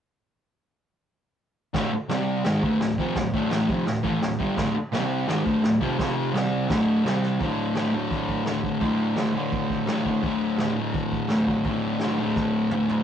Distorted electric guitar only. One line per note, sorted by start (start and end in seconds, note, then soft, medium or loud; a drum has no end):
1.74 1.91 D2 medium
1.74 1.91 A2 loud
1.74 1.91 D3 loud
1.92 muted distorted electric guitar stroke medium
2.09 2.44 C3 medium
2.09 2.44 G3 medium
2.09 2.45 C4 loud
2.45 2.62 G#2 medium
2.45 2.62 D#3 medium
2.45 2.63 G#3 loud
2.63 2.79 D2 medium
2.63 2.80 A2 medium
2.63 2.80 D3 loud
2.80 2.94 D2 medium
2.80 2.95 A2 medium
2.99 3.15 F2 medium
2.99 3.16 C3 medium
2.99 3.16 F3 loud
3.16 3.30 D2 medium
3.16 3.30 A2 medium
3.34 3.51 D2 medium
3.34 3.50 A2 medium
3.34 3.51 D3 medium
3.51 3.68 A2 medium
3.51 3.68 E3 loud
3.51 3.69 A3 loud
3.69 3.86 F2 loud
3.69 3.86 C3 loud
3.69 3.86 F3 loud
3.86 4.00 D2 medium
3.86 4.00 A2 medium
4.03 4.21 A2 medium
4.03 4.21 E3 medium
4.03 4.21 A3 medium
4.22 4.36 D2 medium
4.22 4.36 A2 medium
4.39 4.56 G2 medium
4.39 4.56 D3 medium
4.39 4.57 G3 medium
4.57 4.74 D2 loud
4.57 4.74 A2 loud
4.57 4.74 D3 loud
4.75 muted distorted electric guitar stroke medium
4.92 5.27 C3 medium
4.92 5.28 G3 medium
4.92 5.28 C4 medium
5.28 5.44 G#2 medium
5.28 5.45 D#3 loud
5.28 5.45 G#3 loud
5.45 5.62 D2 medium
5.45 5.62 A2 medium
5.45 5.63 D3 loud
5.63 5.77 D2 medium
5.63 5.77 A2 medium
5.81 5.97 F2 medium
5.81 5.98 C3 loud
5.81 5.98 F3 loud
5.98 6.33 F2 loud
5.98 6.32 C3 loud
5.98 6.34 F3 loud
6.33 6.68 C3 medium
6.33 6.69 G3 loud
6.33 6.69 C4 loud
6.69 7.04 D2 medium
6.69 7.04 A2 medium
6.69 7.05 D3 loud
7.05 7.39 C3 loud
7.05 7.40 G3 loud
7.05 7.40 C4 medium
7.39 7.74 D2 medium
7.39 7.75 A2 loud
7.39 7.78 D3 loud
7.74 8.44 D2 medium
7.74 7.94 A2 medium
7.74 7.91 D3 medium
7.92 8.45 A2 medium
7.92 8.48 D3 medium
8.45 8.79 D2 medium
8.45 8.65 A2 loud
8.45 8.62 D3 loud
8.62 8.80 A2 medium
8.62 8.83 D3 medium
8.79 9.15 D2 medium
8.79 9.16 A2 loud
8.79 9.18 D3 loud
9.15 9.86 D2 medium
9.15 9.36 A2 medium
9.15 9.32 D3 medium
9.33 9.89 D3 medium
9.37 9.87 A2 medium
9.86 10.22 D2 loud
9.86 10.06 A2 loud
9.86 10.04 D3 loud
10.04 10.22 A2 medium
10.04 10.25 D3 medium
10.22 10.57 D2 medium
10.22 10.59 A2 loud
10.22 10.61 D3 loud
10.58 11.28 D2 medium
10.58 10.78 A2 medium
10.62 10.75 D3 medium
10.76 11.30 A2 medium
10.76 11.33 D3 medium
11.29 11.66 D2 medium
11.29 11.50 A2 loud
11.33 11.47 D3 loud
11.47 11.66 A2 medium
11.47 11.69 D3 medium
11.66 12.00 D2 medium
11.66 12.02 A2 loud
11.66 12.05 D3 loud
12.00 12.71 D2 medium
12.00 12.21 A2 medium
12.05 12.18 D3 medium
12.18 12.72 A2 medium
12.18 12.75 D3 medium
12.72 13.03 D2 medium
12.72 12.91 A2 loud
12.72 12.88 D3 loud
12.88 13.03 A2 medium
12.88 13.03 D3 medium